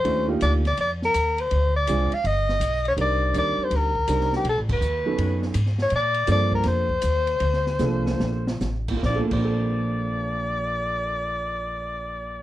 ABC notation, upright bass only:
X:1
M:4/4
L:1/8
Q:"Swing" 1/4=164
K:Bb
V:1 name="Upright bass" clef=bass
E,,2 D,,2 F,,2 E,,2 | D,,2 C,, z G,,,2 =B,,,2 | C,,2 E,, z D,,2 C,,2 | (3=B,,, A,,, ^F,,, ^D,,2 ^F,,2 _A,,2 |
B,,2 G,,2 F,,2 E,,2 | D,,2 C,,2 B,,,2 A,,,2 | B,,, B,,,6- B,,,- | B,,,8 |]